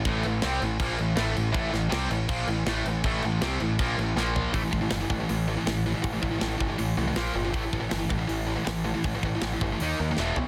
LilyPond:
<<
  \new Staff \with { instrumentName = "Distorted electric guitar" } { \clef bass \time 4/4 \key a \minor \tempo 4 = 160 <a, e a>8 <a, e>8 <c g c'>8 <a, e>8 <bes, f bes>8 <a, e>8 <a, e a>8 <a, e>8 | <a, e a>8 <a, e>8 <c g c'>8 <a, e>8 <bes, f bes>8 <a, e>8 <a, e a>8 <a, e>8 | <a, e a>8 <a, e>8 <c g c'>8 <a, e>8 <bes, f bes>8 <a, e>8 <bes, f bes>4 | <a, e a>16 <a, e>16 <a, e>16 <a, e>16 <a, e>16 <a, e>16 <a, e>16 <a, e>16 <a, e>8 <a, e>16 <a, e>16 <a, e>8 <a, e>16 <a, e>16 |
<a, e>16 <a, e>16 <a, e>16 <a, e>16 <a, e>16 <a, e>16 <a, e>16 <a, e>16 <a, e>8 <a, e>16 <a, e>16 <bes, f bes>8 <bes, f>16 <bes, f>16 | <a, e a>16 <a, e>16 <a, e>16 <a, e>16 <a, e>16 <a, e>16 <a, e>16 <a, e>16 <a, e>8 <a, e>16 <a, e>16 <a, e>8 <a, e>16 <a, e>16 | <a, e>16 <a, e>16 <a, e>16 <a, e>16 <a, e>16 <a, e>16 <a, e>16 <a, e>16 <dis ais dis'>8 <dis ais>16 <dis ais>16 <e, b, e>8 <e, b,>16 r16 | }
  \new Staff \with { instrumentName = "Picked electric bass" } { \clef bass \time 4/4 \key a \minor a,,8 a,,8 c,8 a,,8 bes,,8 a,,8 a,,8 a,,8 | a,,8 a,,8 c,8 a,,8 bes,,8 a,,8 a,,8 a,,8 | a,,8 a,,8 c,8 a,,8 bes,,8 a,,8 bes,,4 | a,,8 a,,8 g,,8 a,,8 a,,4 a,,4 |
a,,8 a,,8 a,,8 g,,8 a,,8 c,8 bes,,8 g,,8 | a,,8 a,,8 g,,8 a,,8 a,,4 a,,4 | a,,8 a,,8 a,,8 g,,8 dis,8 dis,8 e,,8 b,,8 | }
  \new DrumStaff \with { instrumentName = "Drums" } \drummode { \time 4/4 <cymc bd>8 cymc8 <cymc sn>8 cymc8 <cymc bd>8 cymc8 <cymc sn>8 cymc8 | <cymc bd>8 <cymc sn>8 <cymc sn>8 cymc8 <cymc bd>8 cymc8 <cymc sn>8 cymc8 | <cymc bd>8 cymc8 <cymc sn>8 cymc8 <cymc bd>8 cymc8 sn8 tomfh8 | <hho bd>8 bd8 <hho sn>8 bd8 hho4 <hho sn>4 |
<hho bd>8 bd8 <hho sn>8 bd8 hho4 <hho sn>4 | <hho bd>8 bd8 <hho sn>8 bd8 hho4 <hho sn>4 | <hho bd>8 bd8 <hho sn>8 bd8 hho4 sn8 tomfh8 | }
>>